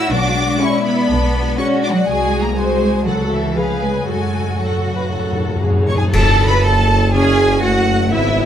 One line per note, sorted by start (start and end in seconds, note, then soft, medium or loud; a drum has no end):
0.00 0.13 A2 medium
0.00 0.13 A3 soft
0.00 0.11 E4 medium
0.00 0.43 F#4 medium
0.00 0.61 F#4 medium
0.00 0.13 A4 medium
0.00 0.13 C#5 medium
0.00 0.11 E6 medium
0.11 0.50 B1 medium
0.11 1.08 B2 medium
0.11 0.60 D4 medium
0.11 0.60 D6 medium
0.27 1.24 G#3 medium
0.44 1.41 F#4 medium
0.60 0.85 C#4 medium
0.60 1.09 E4 medium
0.60 0.96 F#4 medium
0.60 0.96 G#4 medium
0.60 0.92 D5 medium
0.60 0.85 C#6 medium
0.77 1.74 G#4 soft
0.84 1.57 B3 medium
0.84 1.57 B5 medium
0.93 1.57 D5 soft
1.09 1.48 B1 medium
1.09 2.09 B2 medium
1.09 1.57 D4 medium
1.26 2.23 G#3 soft
1.42 2.39 F#4 soft
1.57 1.83 C#4 medium
1.57 1.94 F#4 medium
1.57 2.06 F#4 medium
1.57 1.95 G#4 medium
1.57 1.90 D5 medium
1.57 1.66 C#6 medium
1.75 2.72 G#4 medium
1.83 1.86 D4 medium
1.83 1.91 D6 medium
1.91 2.08 F#3 medium
1.91 2.09 D5 medium
1.91 2.07 F#5 medium
2.07 3.02 C2 medium
2.07 3.08 C3 medium
2.07 2.39 G#3 medium
2.07 2.53 F#4 medium
2.07 2.53 G#4 medium
2.07 2.55 G#4 medium
2.07 2.40 G#5 medium
2.24 3.08 G#3 soft
2.40 2.57 A#3 medium
2.40 3.39 F#4 soft
2.40 2.56 A#5 medium
2.56 3.05 G#3 medium
2.56 3.04 F#4 soft
2.56 3.05 G#4 soft
2.56 3.05 C5 medium
2.56 2.89 D#5 soft
2.56 3.06 G#5 medium
2.73 3.08 G#4 soft
2.90 3.08 D#5 soft
3.05 4.08 C#2 medium
3.05 3.53 C#3 medium
3.05 3.56 C#3 medium
3.05 3.31 F#3 medium
3.05 3.55 F#4 soft
3.05 3.56 A4 medium
3.05 3.55 A4 medium
3.05 3.30 F#5 medium
3.23 3.59 A3 soft
3.31 3.56 E3 medium
3.31 3.57 E5 soft
3.40 3.59 F#4 soft
3.40 3.90 C#5 soft
3.56 4.10 C#3 soft
3.56 3.82 F3 medium
3.56 4.08 G#4 soft
3.56 4.07 G#4 medium
3.56 4.08 B4 soft
3.56 3.82 F5 medium
3.74 4.10 B3 soft
3.82 4.07 G#3 medium
3.82 4.08 G#5 soft
3.91 4.10 G#4 soft
3.91 4.58 C#5 soft
4.07 4.15 F#2 soft
4.07 5.90 F#2 soft
4.07 6.13 F#2 soft
4.07 4.59 G#3 medium
4.07 4.59 F#4 soft
4.07 5.88 F#4 medium
4.07 4.58 A4 soft
4.07 4.59 G#5 medium
4.16 4.22 F#2 soft
4.23 4.30 F#2 soft
4.23 5.28 A3 soft
4.32 4.38 F#2 soft
4.39 4.46 F#2 soft
4.39 5.45 F#4 soft
4.47 4.54 F#2 soft
4.55 4.61 F#2 soft
4.60 4.69 F#2 soft
4.60 5.62 F#3 soft
4.60 4.91 A4 soft
4.60 4.93 C#5 soft
4.60 5.63 F#5 soft
4.70 4.77 F#2 soft
4.77 4.84 F#2 soft
4.77 5.79 A4 soft
4.86 4.92 F#2 soft
4.93 5.00 F#2 soft
4.93 5.02 B4 soft
4.93 5.62 C#5 soft
5.01 5.08 F#2 soft
5.09 5.16 F#2 soft
5.09 6.16 C#3 soft
5.09 5.61 A4 soft
5.17 5.23 F#2 medium
5.25 5.31 F#2 medium
5.29 5.39 F#2 medium
5.29 8.15 A3 soft
5.40 5.46 F#2 medium
5.46 5.55 F#2 medium
5.46 6.46 F#4 soft
5.56 5.62 F#2 medium
5.63 5.70 F#2 medium
5.63 6.13 G#4 soft
5.63 5.96 C#5 soft
5.71 5.77 F#2 medium
5.79 5.85 F#2 medium
5.79 8.15 A4 soft
5.87 5.93 F#2 medium
5.87 5.96 C#5 medium
5.87 5.92 C#6 medium
5.87 5.96 C#6 soft
5.94 6.01 F#2 medium
5.94 6.14 G#4 medium
5.94 6.63 C#5 soft
5.94 6.04 G#5 soft
5.94 6.04 G#5 medium
6.02 6.09 F#2 medium
6.13 8.13 F#1 medium
6.13 8.09 F#1 medium
6.13 6.84 F#2 medium
6.13 8.15 F#2 medium
6.13 6.46 A4 medium
6.13 6.46 A5 medium
6.13 concert bass drum medium
6.13 crash medium
6.31 7.29 C#4 medium
6.47 6.79 F#4 medium
6.47 6.64 B4 medium
6.47 6.64 B5 medium
6.47 6.54 B5 medium
6.63 7.13 A4 medium
6.63 6.96 C#5 medium
6.63 7.13 A5 medium
6.63 7.12 A5 medium
6.80 7.45 F#4 soft
6.97 7.62 C#5 soft
7.13 8.14 C#3 medium
7.13 7.59 C#4 medium
7.13 7.62 G#4 medium
7.13 7.62 G#5 medium
7.30 8.14 C#4 soft
7.46 7.78 F#4 medium
7.62 8.12 A3 medium
7.62 8.11 F#4 medium
7.62 7.94 C#5 soft
7.62 8.11 F#5 medium
7.62 8.12 F#5 medium
7.79 8.14 F#4 medium
7.95 8.14 C#5 soft
8.12 8.45 G#1 medium
8.12 8.45 G#2 medium
8.12 8.45 B3 medium
8.12 8.45 E4 medium
8.12 8.44 E5 medium
8.12 8.45 E5 medium
8.28 8.45 B3 medium